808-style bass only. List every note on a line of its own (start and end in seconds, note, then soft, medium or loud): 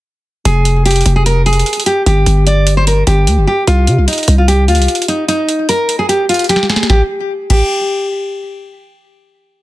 0.45 1.03 F1 loud
1.06 1.64 F1 loud
2.06 2.26 G1 loud
2.27 3.04 G1 loud
3.07 3.29 G1 loud
3.27 3.39 D2 medium
3.37 3.47 G1 loud
3.67 3.89 C2 loud
3.88 3.99 C3 medium
3.98 4.07 C2 loud
4.28 4.70 C2 loud
4.68 4.80 D2 loud
4.78 4.88 C2 loud